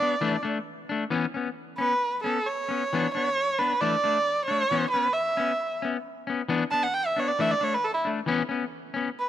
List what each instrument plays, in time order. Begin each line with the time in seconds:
Already playing: erhu D5
0.00 clean electric guitar B3 D4
0.21 clean electric guitar E3 A3 D4
0.43 clean electric guitar A3 D4
0.89 clean electric guitar A3 D4
1.10 clean electric guitar E3 B3 C#4
1.34 clean electric guitar B3 C#4
1.78 clean electric guitar B3 C#4, erhu B4
2.24 clean electric guitar B3 C#4, erhu A4
2.47 erhu C#5
2.68 clean electric guitar B3 C#4
2.93 clean electric guitar E3 B3 D4
3.15 clean electric guitar B3 D4, erhu C#5
3.58 clean electric guitar B3 D4, erhu B4
3.81 clean electric guitar E3 A3 D4, erhu D5
4.04 clean electric guitar A3 D4
4.46 clean electric guitar D4, erhu C#5
4.51 clean electric guitar A3
4.71 clean electric guitar E3 B3 C#4
4.91 clean electric guitar C#4, erhu B4
4.95 clean electric guitar B3
5.13 erhu E5
5.37 clean electric guitar B3 C#4
5.82 clean electric guitar B3 C#4
6.27 clean electric guitar B3 C#4
6.49 clean electric guitar E3 B3 D4
6.71 clean electric guitar B3 D4, erhu A5
6.83 erhu F#5
6.94 erhu G5
7.06 erhu E5
7.16 clean electric guitar B3 D4, erhu C#5
7.28 erhu D5
7.39 clean electric guitar E3 A3 D4, erhu E5
7.51 erhu D5
7.61 clean electric guitar A3 D4, erhu C#5
7.74 erhu B4
7.85 erhu A4
7.94 erhu E4
8.05 clean electric guitar A3 D4
8.26 clean electric guitar E3 B3 C#4
8.49 clean electric guitar B3 C#4
8.94 clean electric guitar B3 C#4
9.20 erhu B4